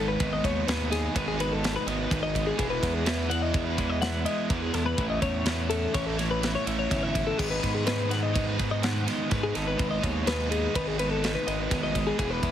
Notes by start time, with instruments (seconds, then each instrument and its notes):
Already playing: analog synth bass G#1, overdriven electric guitar G#2 D#3 D#4
0.00 overdriven electric guitar G#3 B3
0.08 clean electric guitar B4
0.20 analog synth bass G#1, overdriven electric guitar G#2 D#3 G#3 B3 D#4, kick, ride
0.33 clean electric guitar D#5
0.44 analog synth bass D#2, overdriven electric guitar G#3 B3 D#4, clean electric guitar C#5, kick, ride
0.67 analog synth bass D#2, overdriven electric guitar G#2 D#3 G#3 B3 D#4, clean electric guitar B4, snare, ride
0.91 overdriven electric guitar G#3 B3 D#4, clean electric guitar G#4, snare, ride
1.15 analog synth bass G#1, overdriven electric guitar D#3 G#3 B3 D#4, clean electric guitar B4, kick, ride
1.28 clean electric guitar G#4
1.38 overdriven electric guitar G#2 D#3 G#3 B3 D#4, clean electric guitar B4, ride
1.52 clean electric guitar A4
1.62 overdriven electric guitar D#3 G#3 B3 D#4, snare, ride
1.76 clean electric guitar B4
1.86 analog synth bass G#1, overdriven electric guitar G#3 B3 D#4, clean electric guitar D#5, ride
2.00 clean electric guitar B4
2.10 analog synth bass G#1, overdriven electric guitar G#2 D#3 G#3 B3 D#4, kick, ride
2.23 clean electric guitar D#5
2.34 overdriven electric guitar G#3 B3 D#4, kick, ride
2.47 clean electric guitar G#4
2.57 analog synth bass E1, overdriven electric guitar E3 G#3 B3 E4, clean electric guitar G#4, kick, ride
2.70 clean electric guitar B4
2.80 analog synth bass E2, overdriven electric guitar G#3 B3 E4, kick, ride
2.84 snare
2.94 clean electric guitar G#4
3.05 overdriven electric guitar E3 G#3 B3 E4, clean electric guitar B4, snare, ride
3.28 overdriven electric guitar G#3 B3 E4, clean electric guitar F#5, ride
3.42 clean electric guitar D#5
3.52 overdriven electric guitar E3 G#3 B3 E4, kick, ride
3.66 clean electric guitar B4
3.77 overdriven electric guitar E3 G#3 B3 E4, kick, ride
3.90 clean electric guitar D#5
4.01 overdriven electric guitar E3 G#3 B3 E4, clean electric guitar F#5, snare, ride
4.25 overdriven electric guitar G#3 B3 E4, clean electric guitar D#5, ride
4.49 analog synth bass E2, overdriven electric guitar E3 G#3 B3 E4, clean electric guitar B4, kick, ride
4.62 clean electric guitar G#4
4.74 analog synth bass E2, overdriven electric guitar G#3 B3 E4, clean electric guitar A4, snare, ride
4.86 clean electric guitar B4
4.97 analog synth bass A1, overdriven electric guitar A2 E3 A3 C#4 E4, kick, ride
5.10 clean electric guitar D#5
5.21 analog synth bass E2, overdriven electric guitar A3 C#4 E4, clean electric guitar C#5, kick, ride
5.45 analog synth bass E2, overdriven electric guitar A2 E3 A3 C#4 E4, clean electric guitar B4, snare, ride
5.69 overdriven electric guitar A3 C#4 E4, clean electric guitar A4, ride
5.93 analog synth bass A1, overdriven electric guitar E3 A3 C#4 E4, clean electric guitar C#5, kick, snare, ride
6.06 clean electric guitar A4
6.17 overdriven electric guitar A2 E3 A3 C#4 E4, clean electric guitar C#5, snare, ride
6.31 clean electric guitar B4
6.41 overdriven electric guitar E3 A3 C#4 E4, snare, ride
6.55 clean electric guitar C#5
6.65 analog synth bass A1, overdriven electric guitar A3 C#4 E4, clean electric guitar E5, ride
6.79 clean electric guitar C#5
6.89 analog synth bass G1, overdriven electric guitar A2 E3 A3 C#4 E4, kick, snare, ride
7.03 clean electric guitar E5
7.13 overdriven electric guitar A3 C#4 E4, kick, ride
7.27 clean electric guitar A4
7.38 analog synth bass G#1, overdriven electric guitar G#2 D#3 G#3 B3 D#4, clean electric guitar G#4, kick, crash
7.51 clean electric guitar B4
7.60 analog synth bass G#2, overdriven electric guitar G#3 B3 D#4, kick, snare, ride
7.74 clean electric guitar G#4
7.85 overdriven electric guitar G#2 D#3 G#3 B3 D#4, clean electric guitar B4, snare, ride
8.09 overdriven electric guitar G#3 B3 D#4, clean electric guitar F#5, snare, ride
8.23 clean electric guitar D#5
8.33 overdriven electric guitar D#3 G#3 B3 D#4, kick, ride
8.47 clean electric guitar B4
8.57 overdriven electric guitar G#2 D#3 G#3 B3 D#4, kick, ride
8.71 clean electric guitar D#5
8.82 overdriven electric guitar D#3 G#3 B3 D#4, clean electric guitar F#5, snare, ride
9.04 overdriven electric guitar G#3 B3 D#4, clean electric guitar D#5, ride
9.09 snare
9.29 overdriven electric guitar G#2 D#3 G#3 B3 D#4, analog synth bass G#2, clean electric guitar B4, kick, snare, ride
9.43 clean electric guitar G#4
9.54 analog synth bass G#1, overdriven electric guitar G#3 B3 D#4, clean electric guitar A4, snare, ride
9.67 clean electric guitar B4
9.77 analog synth bass G#1, overdriven electric guitar G#2 D#3 G#3 B3 D#4, kick, ride
9.91 clean electric guitar D#5
10.00 analog synth bass D#2, overdriven electric guitar G#3 B3 D#4, clean electric guitar C#5, kick, ride
10.24 analog synth bass D#2, overdriven electric guitar G#2 D#3 G#3 B3 D#4, clean electric guitar B4, snare, ride
10.49 overdriven electric guitar G#3 B3 D#4, clean electric guitar G#4, ride
10.74 analog synth bass G#1, overdriven electric guitar D#3 G#3 B3 D#4, clean electric guitar B4, kick, ride
10.88 clean electric guitar G#4
10.98 overdriven electric guitar G#2 D#3 G#3 B3 D#4, clean electric guitar B4, ride
11.11 clean electric guitar A4
11.22 overdriven electric guitar D#3 G#3 B3 D#4, snare, ride
11.35 clean electric guitar B4
11.47 analog synth bass G#1, overdriven electric guitar G#3 B3 D#4, clean electric guitar D#5, ride
11.60 clean electric guitar B4
11.70 analog synth bass G#1, overdriven electric guitar G#2 D#3 G#3 B3 D#4, kick, snare, ride
11.83 clean electric guitar D#5
11.93 overdriven electric guitar G#3 B3 D#4, kick, ride
12.07 clean electric guitar G#4
12.18 analog synth bass E1, overdriven electric guitar E3 G#3 B3 E4, clean electric guitar G#4, kick, ride
12.31 clean electric guitar B4
12.42 analog synth bass E2, overdriven electric guitar G#3 B3 E4, kick, ride